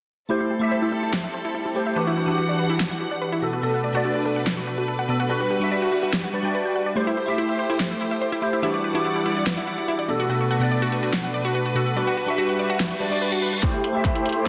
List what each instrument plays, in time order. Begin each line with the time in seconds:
0.29 string section G3 C4 A4, synth keys A3 E4 G4 C5, synth arpeggio sound E4
0.41 synth arpeggio sound E4
0.51 synth arpeggio sound G4
0.59 synth keys A3 E4 G4, synth arpeggio sound E5
0.63 synth keys E5
0.71 synth arpeggio sound C5
0.82 synth arpeggio sound E4
0.92 synth arpeggio sound E4
1.03 synth arpeggio sound E4
1.13 synth arpeggio sound G4, snare
1.24 synth arpeggio sound E5
1.34 synth arpeggio sound C5
1.45 synth arpeggio sound E4
1.55 synth arpeggio sound E4
1.66 synth arpeggio sound E4
1.75 synth keys A3 E4 G4 C5, synth arpeggio sound G4
1.86 synth arpeggio sound E5
1.95 synth keys E3 D4 F#4 G4, string section E3 D4 F#5, synth arpeggio sound B4
2.07 synth arpeggio sound E4
2.17 synth arpeggio sound E4
2.26 synth keys E3 D4 F#4, synth arpeggio sound E4
2.30 synth keys G4
2.38 synth arpeggio sound F#4
2.49 synth arpeggio sound D5
2.59 synth arpeggio sound B4
2.70 synth arpeggio sound E4
2.80 synth arpeggio sound E4, snare
2.91 synth arpeggio sound E4
3.01 synth arpeggio sound F#4
3.11 synth arpeggio sound D5
3.22 synth arpeggio sound B4
3.32 synth arpeggio sound E4
3.41 synth keys B2 B3 D4 A4, string section A3 D4 B4, synth arpeggio sound F#4
3.53 synth arpeggio sound F#4
3.62 synth keys B2 B3 D4 A4, synth arpeggio sound A4
3.74 synth arpeggio sound F#5
3.84 synth arpeggio sound D5
3.93 synth keys B2 B3 D4, synth arpeggio sound F#4
3.97 synth keys D5
4.05 synth arpeggio sound F#4
4.15 synth arpeggio sound F#4
4.26 synth arpeggio sound A4
4.36 synth arpeggio sound F#5
4.46 synth arpeggio sound D5, snare
4.57 synth arpeggio sound F#4
4.67 synth arpeggio sound F#4
4.78 synth arpeggio sound F#4
4.88 synth arpeggio sound A4
4.99 synth arpeggio sound F#5
5.08 synth keys B2 B3 D4 A4, synth arpeggio sound D5
5.20 synth arpeggio sound F#4
5.29 synth keys G3 D4 F#4 B4, string section G3 F#4, synth arpeggio sound F#4
5.40 synth arpeggio sound F#4
5.51 synth arpeggio sound G4
5.59 synth keys G3 D4 F#4, synth arpeggio sound F#5
5.63 synth keys E5
5.71 synth arpeggio sound D5
5.82 synth arpeggio sound F#4
5.92 synth arpeggio sound F#4
6.03 synth arpeggio sound F#4
6.13 synth arpeggio sound G4, snare
6.24 synth arpeggio sound F#5
6.33 synth keys G3 D4 F#4 D5, synth arpeggio sound B4
6.43 synth keys G3 D4 F#4 D5, synth arpeggio sound G5
6.55 synth arpeggio sound B4
6.65 synth arpeggio sound G5
6.76 synth arpeggio sound F#5
6.86 synth arpeggio sound D5
6.95 synth keys A3 E4 G4 C5, string section A3 G4 C5, synth arpeggio sound C5
7.07 synth arpeggio sound E4
7.17 synth arpeggio sound E4
7.26 synth keys A3 E4 G4, synth arpeggio sound E4
7.30 synth keys E5
7.38 synth arpeggio sound E4
7.49 synth arpeggio sound E5
7.59 synth arpeggio sound C5
7.70 synth arpeggio sound E4
7.80 synth arpeggio sound E4, snare
7.91 synth arpeggio sound E4
8.01 synth arpeggio sound E4
8.11 synth arpeggio sound E5
8.21 synth arpeggio sound C5
8.32 synth arpeggio sound E4
8.41 synth keys A3 E4 G4 C5, synth arpeggio sound E4
8.53 synth arpeggio sound E4
8.62 synth keys E3 D4 F#4 G4, string section G3 E4 D5 F#5, synth arpeggio sound E4
8.74 synth arpeggio sound D5
8.84 synth arpeggio sound B4
8.93 synth keys E3 D4 F#4 G4, synth arpeggio sound E4
9.05 synth arpeggio sound E4
9.16 synth arpeggio sound E4
9.26 synth arpeggio sound E4
9.37 synth arpeggio sound D5
9.46 synth arpeggio sound B4, snare
9.57 synth arpeggio sound E4
9.67 synth arpeggio sound E4
9.78 synth arpeggio sound E4
9.88 synth arpeggio sound E4
9.99 synth arpeggio sound D5
10.08 synth keys B2 B3 D4 A4, string section A3 D4 B4, synth arpeggio sound D5
10.20 synth arpeggio sound F#4
10.29 synth keys B2 B3 D4 A4, synth arpeggio sound F#4
10.41 synth arpeggio sound F#4
10.51 synth arpeggio sound F#4
10.59 synth keys B2 B3 D4, synth arpeggio sound F#5
10.63 synth keys D5
10.72 synth arpeggio sound D5
10.82 synth arpeggio sound F#4
10.92 synth arpeggio sound F#4
11.03 synth arpeggio sound F#4
11.13 synth arpeggio sound F#4, snare
11.24 synth arpeggio sound F#5
11.34 synth arpeggio sound D5
11.45 synth arpeggio sound F#4
11.55 synth arpeggio sound F#4
11.66 synth arpeggio sound F#4
11.75 synth keys B2 B3 D4 A4, synth arpeggio sound F#4
11.86 synth arpeggio sound F#5
11.96 synth keys G3 D4 F#4 B4, string section G3 F#4, synth arpeggio sound D5
12.07 synth arpeggio sound F#4
12.17 synth arpeggio sound F#4
12.26 synth keys G3 D4 F#4, synth arpeggio sound F#4
12.30 synth keys E5
12.38 synth arpeggio sound F#4
12.49 synth arpeggio sound F#5
12.59 synth arpeggio sound D5
12.70 synth arpeggio sound F#4
12.80 snare, reverse cymbal
12.91 synth arpeggio sound F#4
13.00 synth keys G3 D4 F#4 D5, synth arpeggio sound B4
13.09 synth keys G3 D4 F#4 D5, synth arpeggio sound D5
13.22 synth arpeggio sound B4
13.32 synth arpeggio sound F#4
13.42 synth arpeggio sound B4
13.53 synth arpeggio sound F#4
13.62 synth keys A3 E4 G4 C5, supersaw synth A3 E4 G4 C5 G5, string section A3 G4 C5, synth arpeggio sound E4, kick, clap, closed hi-hat, riser
13.74 synth arpeggio sound E4
13.84 supersaw synth A3 E4 G4 C5 G5, synth arpeggio sound E4, closed hi-hat
13.93 synth keys A3 E4 G4 E5, synth arpeggio sound E5
14.05 synth arpeggio sound C5, kick, clap, closed hi-hat
14.15 synth arpeggio sound E4, closed hi-hat
14.26 synth arpeggio sound E4, closed hi-hat
14.29 closed hi-hat
14.33 synth arpeggio sound E4, closed hi-hat